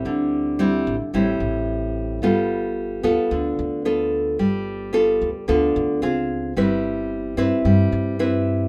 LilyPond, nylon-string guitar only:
\new Staff \with { instrumentName = "Nylon-string guitar" } { \time 4/4 \key g \mixolydian \tempo 4 = 110 << { <g c' e'>4 <g c' e'>8 r8 <g c' e'>2 | <b f' a'>4. <b f' a'>4. <b f' a'>4~ | <b f' a'>4 <b f' a'>8 r8 <b f' a'>4 <bis eis' gis'>4 | <c' e' b'>4. <c' e' b'>4. <c' e' b'>4 | } \\ { d2 a,2 | g2 d2 | g2 d4 r4 | g2 g2 | } >> }